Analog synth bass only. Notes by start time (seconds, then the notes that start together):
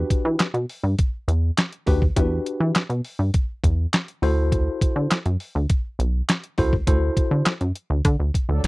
0.25 E3
0.54 B2
0.83 G2
1.28 E2
1.87 D#2
2.17 E2
2.60 E3
2.90 B2
3.19 G2
3.64 E2
4.22 D2
4.96 D3
5.26 F#2
5.55 D2
5.99 B1
6.58 C#2
6.87 D2
7.31 D3
7.61 F#2
7.90 D2
8.05 D3
8.20 D2
8.49 D2
8.64 A1